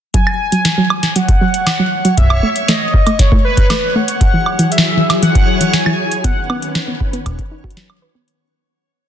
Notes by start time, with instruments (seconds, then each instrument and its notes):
0.14 synth arpeggio sound F#3, synth texture C#5, soft synth lead G#5, kick, closed hi-hat
0.27 high woodblock
0.52 synth arpeggio sound F#3, closed hi-hat
0.65 snare, closed hi-hat
0.78 synth arpeggio sound F#3
0.90 high woodblock
1.03 snare, closed hi-hat
1.09 soft synth lead G#5
1.16 synth arpeggio sound F#3, soft synth lead F#5, closed hi-hat
1.29 kick, closed hi-hat
1.41 synth arpeggio sound F#3
1.54 closed hi-hat
1.67 snare, closed hi-hat, high woodblock
1.79 synth arpeggio sound F#3
2.05 synth arpeggio sound F#3, closed hi-hat
2.17 soft synth lead E5, kick, closed hi-hat
2.21 kick
2.24 kick
2.27 kick, high woodblock
2.30 kick
2.33 kick
2.37 kick
2.40 synth arpeggio sound A3, kick
2.56 closed hi-hat
2.68 synth arpeggio sound A3, soft synth lead D#5, snare, closed hi-hat
2.94 kick
3.07 synth arpeggio sound A3, closed hi-hat, high woodblock
3.19 soft synth lead C#5, kick, snare, closed hi-hat
3.32 synth arpeggio sound A3, kick
3.45 soft synth lead B4
3.57 kick, closed hi-hat
3.70 synth arpeggio sound A3, snare, closed hi-hat, high woodblock
3.95 synth arpeggio sound A3, soft synth lead F#5
4.08 closed hi-hat
4.21 string machine F#3 E4 G#4, kick, closed hi-hat
4.34 synth arpeggio sound E3
4.46 high woodblock
4.59 synth arpeggio sound E3, closed hi-hat
4.72 soft synth lead E5, closed hi-hat
4.78 snare
4.97 synth arpeggio sound E3
5.10 snare, closed hi-hat, high woodblock
5.23 synth arpeggio sound E3, soft synth lead F#5, closed hi-hat
5.35 kick, closed hi-hat
5.61 synth arpeggio sound E3, closed hi-hat
5.73 soft synth lead G#5, snare, closed hi-hat
5.86 synth arpeggio sound E3, high woodblock
6.11 closed hi-hat
6.24 string machine D#3 C#4 B4, synth arpeggio sound B3, soft synth lead F#5, kick, closed hi-hat
6.50 synth arpeggio sound B3, high woodblock
6.62 closed hi-hat
6.75 snare, closed hi-hat
6.88 synth arpeggio sound B3
7.01 kick
7.13 synth arpeggio sound B3, closed hi-hat
7.26 kick, closed hi-hat, high woodblock
7.29 kick
7.31 kick
7.34 kick
7.36 kick
7.39 kick, closed hi-hat
7.51 synth arpeggio sound D#4
7.64 synth arpeggio sound F#4, kick
7.70 closed hi-hat
7.77 synth arpeggio sound F#3, snare, closed hi-hat
7.90 high woodblock
8.02 synth arpeggio sound B4
8.15 synth arpeggio sound B3
8.28 closed hi-hat